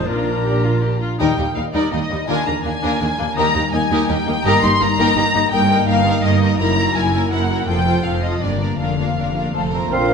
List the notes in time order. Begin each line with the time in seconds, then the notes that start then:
Already playing: A#2 D4 F4
0.02 A#4 A#5
0.06 A#1 A#2 D4 F4 A#4
0.44 G4
0.64 F4
0.82 G4
1.01 F4
1.19 D#2 D#3 G3 D#4 A#4 G5
1.29 A#3
1.37 D#2 G3 A#3 D#4 G4
1.47 A#4
1.55 D#2 G3 D#4 F5
1.65 D#5
1.73 D#2 G3 D#4 A#4 D5 A#5
1.83 D#5
1.91 D#2 G3 A#3 D#4 G4 D#5 A#5
2.02 D#5
2.10 D#2 G3 D#4 A#4
2.19 D#4
2.27 D#2 D#3 A#3 D4 F4 A#4 G#5
2.38 A#3
2.46 D#2 A#3 D4 G#4 A#5
2.56 A#4
2.64 D#2 A#3 D4 F4 G#5
2.74 D5
2.82 D#2 A#3 D4 F4 A#4 A#5
2.92 D5
3.01 D#2 A#3 D4 G#4 A#5
3.09 D5
3.18 D#2 A#3 D4 F4 A#4
3.28 D4
3.36 D#2 D#3 A#3 D#4 G4 A#4 A#5
3.46 G3
3.54 D#2 A#3 D#4 G4
3.64 A#4
3.72 D#2 A#3 D#4 G4 G#5
3.82 D#5
3.90 D#2 A#3 D#4 G4 A#4 A#5
4.00 G5
4.08 D#2 A#3 D#4 G4 G5 A#5
4.19 D#5
4.27 D#2 A#3 D#4 G4
4.36 D#4
4.44 G1 G2 A#3 D#4 G4 A#4 A#5
4.54 G3
4.62 G1 G2 A#3 D#4 G4 C6
4.72 D#4
4.80 G1 G2 A#3 D#4 A#4 A#5
4.90 D#4
4.98 G1 G2 A#3 D#4 G4 A#4 D#5
5.07 A#5
5.16 G1 G2 A#3 D#4 G4 D#5
5.25 A#4
5.34 G1 G2 A#3 D#4
5.43 A#3
5.51 G1 G2 A#3 D#4 A#4 G5
5.60 G3
5.69 A#3 D#4 A#4
5.79 D#4
5.88 G1 G2 A#3 D#4 A#4 F5
5.97 D#4
6.05 A#3 D#4 A#4 D#5
6.15 A#5
6.23 G1 G2 A#3 D#4 A#4 D#5
6.32 A#4
6.42 A#3 D#4 A#4
6.51 A#3
6.58 F#1 F#2 A#3 E4 A#4 A#5
6.69 F#3
6.78 A#3 E4 A#4
6.88 E4
6.95 F#1 F#2 A#3 E4 A#4 G#5
7.05 E4
7.14 A#3 E4 A#4 E5
7.23 A#5
7.32 F#1 F#2 A#3 E4 A#4 E5 F#5
7.41 A#4
7.50 A#3 E4 A#4
7.59 A#3
7.68 F1 F2 F3 F4 A4 C5 G5
7.77 C3
7.86 F3 C4 F4 A4 C5
7.95 F4
8.04 F1 F2 F3 F4 A4 C5 F5
8.14 C5
8.22 F3 F4 A4 C5 D#5 F5
8.32 A5
8.41 G1 G2 A#3 D4 A#4 D5
8.51 D3
8.60 A#3 D4 A#4
8.70 D4
8.79 F1 F2 A#3 D4 F4 A#4 F5
8.88 F3
8.98 A#3 D4 F4 A#4
9.07 D4
9.16 F1 F2 A#3 D4 F4 A#4
9.25 D4
9.35 A#3 D4 F4 A#4 D5
9.44 A#5
9.53 F1 F2 A3 C4 F4 A4 C5 A5
9.63 C3
9.72 A#2 A3 C4 F4 A#4 C5 A#5
9.77 A#3 C4
9.82 D4
9.86 A#4
9.91 A#1 A#2 C4 D4 F4 A#4 C5 F5 A#5 C6
10.09 A#3